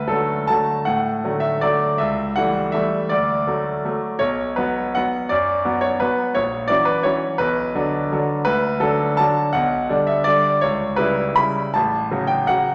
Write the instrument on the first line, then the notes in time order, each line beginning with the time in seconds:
grand piano
Already playing: D2 B4
0.08 D3 F#3 A3 A4
0.47 D3 F#3 A3 A5
0.85 A2 F#5
1.24 D3 F#3 A3
1.40 E5
1.61 D3 F#3 A3 D5
1.98 C#2 E5
2.36 E3 G3 A3 F#5
2.72 E3 G3 A3 E5
3.09 D2 D5
3.47 F#3 A3
3.85 F#3 A3
4.19 B1 C#5
4.56 F#3 B3 B4
4.95 F#3 B3 F#5
5.29 F#2 D5
5.65 F#3 B3
5.81 C#5
6.00 F#3 B3 B4
6.35 A#1 C#5
6.68 E3 F#3 C#4 D5
6.85 B4
7.03 E3 F#3 C#4 C#5
7.38 B1 B4
7.75 D3 F#3 D4
8.12 D3 F#3 D4
8.45 D2 B4
8.80 D3 F#3 D4 A4
9.17 D3 F#3 D4 A5
9.53 B1 F#5
9.89 D3 G3 D4
10.07 E5
10.24 D3 G3 D4 D5
10.61 C#2 C#5
10.96 C#3 G3 E4 B4
11.36 C#3 G3 E4 B5
11.74 A1 A5
12.11 C#3 F#3 F#4
12.27 G5
12.47 C#3 F#3 F#4 F#5